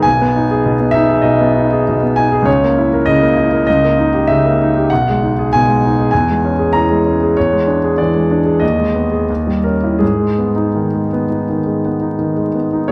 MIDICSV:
0, 0, Header, 1, 2, 480
1, 0, Start_track
1, 0, Key_signature, 5, "minor"
1, 0, Tempo, 603015
1, 41, Time_signature, 4, 2, 24, 8
1, 3401, Tempo, 621118
1, 6761, Tempo, 694444
1, 7721, Tempo, 744417
1, 8681, Tempo, 710059
1, 9639, End_track
2, 0, Start_track
2, 0, Title_t, "Grand piano"
2, 0, Program_c, 0, 0
2, 0, Control_c, 0, 64, 127
2, 20, Note_on_c, 0, 80, 80
2, 43, Note_on_c, 0, 35, 48
2, 54, Control_c, 0, 64, 0
2, 164, Control_c, 0, 64, 127
2, 171, Note_on_c, 0, 59, 46
2, 288, Note_on_c, 0, 63, 45
2, 358, Note_off_c, 0, 59, 0
2, 406, Note_on_c, 0, 68, 46
2, 477, Note_off_c, 0, 63, 0
2, 522, Note_on_c, 0, 47, 48
2, 597, Note_off_c, 0, 68, 0
2, 640, Note_on_c, 0, 59, 42
2, 716, Note_off_c, 0, 47, 0
2, 726, Note_on_c, 0, 76, 84
2, 749, Note_on_c, 0, 63, 53
2, 753, Note_off_c, 0, 80, 0
2, 834, Note_off_c, 0, 59, 0
2, 870, Note_on_c, 0, 68, 45
2, 950, Note_off_c, 0, 63, 0
2, 967, Note_off_c, 0, 35, 0
2, 968, Note_on_c, 0, 75, 59
2, 979, Note_on_c, 0, 35, 49
2, 988, Note_off_c, 0, 76, 0
2, 1073, Note_off_c, 0, 68, 0
2, 1120, Note_on_c, 0, 59, 44
2, 1243, Note_on_c, 0, 63, 45
2, 1320, Note_off_c, 0, 59, 0
2, 1374, Note_on_c, 0, 68, 42
2, 1441, Note_off_c, 0, 63, 0
2, 1500, Note_on_c, 0, 47, 46
2, 1564, Note_off_c, 0, 68, 0
2, 1614, Note_on_c, 0, 59, 42
2, 1685, Note_off_c, 0, 47, 0
2, 1710, Note_off_c, 0, 75, 0
2, 1719, Note_on_c, 0, 80, 71
2, 1730, Note_on_c, 0, 63, 39
2, 1802, Note_off_c, 0, 59, 0
2, 1846, Note_on_c, 0, 68, 50
2, 1920, Note_off_c, 0, 63, 0
2, 1924, Note_off_c, 0, 35, 0
2, 1928, Note_on_c, 0, 37, 54
2, 1955, Note_on_c, 0, 73, 71
2, 1962, Note_off_c, 0, 80, 0
2, 1966, Note_off_c, 0, 68, 0
2, 1979, Control_c, 0, 64, 0
2, 2082, Control_c, 0, 64, 127
2, 2101, Note_on_c, 0, 58, 46
2, 2214, Note_on_c, 0, 64, 43
2, 2283, Note_off_c, 0, 58, 0
2, 2333, Note_on_c, 0, 70, 47
2, 2399, Note_off_c, 0, 64, 0
2, 2432, Note_on_c, 0, 75, 80
2, 2436, Note_off_c, 0, 73, 0
2, 2453, Note_on_c, 0, 49, 46
2, 2519, Note_off_c, 0, 70, 0
2, 2566, Note_on_c, 0, 58, 45
2, 2639, Note_off_c, 0, 49, 0
2, 2679, Note_on_c, 0, 64, 47
2, 2756, Note_off_c, 0, 58, 0
2, 2804, Note_on_c, 0, 70, 43
2, 2872, Note_off_c, 0, 64, 0
2, 2873, Note_off_c, 0, 37, 0
2, 2907, Note_off_c, 0, 75, 0
2, 2919, Note_on_c, 0, 75, 75
2, 2922, Note_off_c, 0, 70, 0
2, 2936, Control_c, 0, 64, 0
2, 2941, Note_on_c, 0, 37, 57
2, 3044, Control_c, 0, 64, 127
2, 3063, Note_on_c, 0, 58, 43
2, 3176, Note_on_c, 0, 63, 47
2, 3242, Note_off_c, 0, 58, 0
2, 3294, Note_on_c, 0, 67, 44
2, 3359, Note_off_c, 0, 63, 0
2, 3399, Note_off_c, 0, 75, 0
2, 3402, Note_on_c, 0, 76, 80
2, 3416, Note_on_c, 0, 49, 44
2, 3479, Note_off_c, 0, 67, 0
2, 3546, Note_on_c, 0, 58, 41
2, 3601, Note_off_c, 0, 49, 0
2, 3664, Note_on_c, 0, 63, 44
2, 3728, Note_off_c, 0, 58, 0
2, 3785, Note_on_c, 0, 67, 44
2, 3848, Note_off_c, 0, 63, 0
2, 3867, Note_off_c, 0, 37, 0
2, 3885, Note_on_c, 0, 78, 79
2, 3887, Note_off_c, 0, 76, 0
2, 3896, Note_off_c, 0, 67, 0
2, 3899, Control_c, 0, 64, 0
2, 3907, Note_on_c, 0, 35, 47
2, 4005, Control_c, 0, 64, 127
2, 4034, Note_on_c, 0, 56, 42
2, 4142, Note_on_c, 0, 63, 39
2, 4210, Note_off_c, 0, 56, 0
2, 4264, Note_on_c, 0, 68, 45
2, 4321, Note_off_c, 0, 63, 0
2, 4359, Note_off_c, 0, 78, 0
2, 4370, Note_on_c, 0, 80, 78
2, 4393, Note_on_c, 0, 47, 39
2, 4439, Note_off_c, 0, 68, 0
2, 4485, Note_on_c, 0, 56, 40
2, 4561, Note_off_c, 0, 47, 0
2, 4614, Note_on_c, 0, 63, 41
2, 4664, Note_off_c, 0, 56, 0
2, 4730, Note_on_c, 0, 68, 40
2, 4787, Note_off_c, 0, 63, 0
2, 4804, Note_off_c, 0, 35, 0
2, 4809, Note_off_c, 0, 80, 0
2, 4821, Note_on_c, 0, 80, 74
2, 4833, Note_off_c, 0, 68, 0
2, 4833, Control_c, 0, 64, 0
2, 4838, Note_on_c, 0, 40, 51
2, 4936, Control_c, 0, 64, 127
2, 4964, Note_on_c, 0, 56, 38
2, 5082, Note_on_c, 0, 61, 38
2, 5143, Note_off_c, 0, 56, 0
2, 5193, Note_on_c, 0, 68, 41
2, 5265, Note_off_c, 0, 61, 0
2, 5297, Note_on_c, 0, 82, 80
2, 5302, Note_off_c, 0, 80, 0
2, 5316, Note_on_c, 0, 52, 42
2, 5383, Note_off_c, 0, 68, 0
2, 5431, Note_on_c, 0, 56, 39
2, 5506, Note_off_c, 0, 52, 0
2, 5559, Note_on_c, 0, 61, 34
2, 5623, Note_off_c, 0, 56, 0
2, 5685, Note_on_c, 0, 68, 40
2, 5746, Note_off_c, 0, 61, 0
2, 5768, Note_off_c, 0, 40, 0
2, 5785, Note_off_c, 0, 82, 0
2, 5792, Note_on_c, 0, 73, 64
2, 5797, Note_off_c, 0, 68, 0
2, 5800, Control_c, 0, 64, 0
2, 5808, Note_on_c, 0, 40, 42
2, 5913, Note_on_c, 0, 56, 38
2, 5941, Control_c, 0, 64, 127
2, 6030, Note_on_c, 0, 62, 39
2, 6101, Note_off_c, 0, 56, 0
2, 6160, Note_on_c, 0, 68, 40
2, 6219, Note_off_c, 0, 62, 0
2, 6265, Note_on_c, 0, 74, 57
2, 6268, Note_off_c, 0, 73, 0
2, 6290, Note_on_c, 0, 52, 41
2, 6345, Note_off_c, 0, 68, 0
2, 6393, Note_on_c, 0, 56, 32
2, 6472, Note_off_c, 0, 52, 0
2, 6522, Note_on_c, 0, 62, 42
2, 6587, Note_off_c, 0, 56, 0
2, 6634, Note_on_c, 0, 68, 37
2, 6716, Note_off_c, 0, 62, 0
2, 6742, Note_off_c, 0, 40, 0
2, 6742, Note_on_c, 0, 75, 59
2, 6758, Note_on_c, 0, 39, 45
2, 6760, Note_off_c, 0, 74, 0
2, 6761, Note_off_c, 0, 68, 0
2, 6774, Control_c, 0, 64, 0
2, 6874, Note_on_c, 0, 56, 33
2, 6901, Control_c, 0, 64, 127
2, 6986, Note_on_c, 0, 59, 34
2, 7061, Note_off_c, 0, 56, 0
2, 7105, Note_on_c, 0, 68, 34
2, 7177, Note_off_c, 0, 59, 0
2, 7212, Note_off_c, 0, 39, 0
2, 7225, Note_off_c, 0, 68, 0
2, 7231, Note_on_c, 0, 39, 45
2, 7239, Control_c, 0, 64, 0
2, 7348, Note_on_c, 0, 55, 32
2, 7358, Control_c, 0, 64, 127
2, 7460, Note_off_c, 0, 75, 0
2, 7464, Note_on_c, 0, 70, 45
2, 7480, Note_on_c, 0, 61, 28
2, 7543, Note_off_c, 0, 55, 0
2, 7601, Note_on_c, 0, 64, 37
2, 7675, Note_off_c, 0, 61, 0
2, 7704, Note_on_c, 0, 68, 49
2, 7708, Note_off_c, 0, 39, 0
2, 7718, Note_off_c, 0, 70, 0
2, 7720, Note_on_c, 0, 44, 37
2, 7725, Note_off_c, 0, 64, 0
2, 7736, Control_c, 0, 64, 0
2, 7837, Note_on_c, 0, 56, 30
2, 7876, Control_c, 0, 64, 127
2, 7962, Note_on_c, 0, 59, 32
2, 8034, Note_off_c, 0, 56, 0
2, 8075, Note_on_c, 0, 63, 34
2, 8155, Note_off_c, 0, 59, 0
2, 8199, Note_on_c, 0, 51, 34
2, 8271, Note_off_c, 0, 63, 0
2, 8321, Note_on_c, 0, 56, 30
2, 8393, Note_off_c, 0, 51, 0
2, 8445, Note_on_c, 0, 59, 38
2, 8513, Note_off_c, 0, 56, 0
2, 8552, Note_on_c, 0, 63, 32
2, 8634, Note_off_c, 0, 59, 0
2, 8654, Note_off_c, 0, 44, 0
2, 8680, Note_on_c, 0, 51, 33
2, 8748, Note_off_c, 0, 63, 0
2, 8792, Note_on_c, 0, 56, 29
2, 8874, Note_off_c, 0, 51, 0
2, 8920, Note_on_c, 0, 59, 32
2, 8988, Note_off_c, 0, 56, 0
2, 9028, Note_on_c, 0, 63, 30
2, 9110, Note_off_c, 0, 59, 0
2, 9146, Note_on_c, 0, 51, 35
2, 9224, Note_off_c, 0, 63, 0
2, 9264, Note_on_c, 0, 56, 30
2, 9346, Note_off_c, 0, 51, 0
2, 9392, Note_on_c, 0, 59, 32
2, 9394, Note_off_c, 0, 68, 0
2, 9468, Note_off_c, 0, 56, 0
2, 9514, Note_on_c, 0, 63, 33
2, 9589, Note_off_c, 0, 59, 0
2, 9615, Note_on_c, 0, 73, 73
2, 9635, Note_off_c, 0, 63, 0
2, 9639, Note_off_c, 0, 73, 0
2, 9639, End_track
0, 0, End_of_file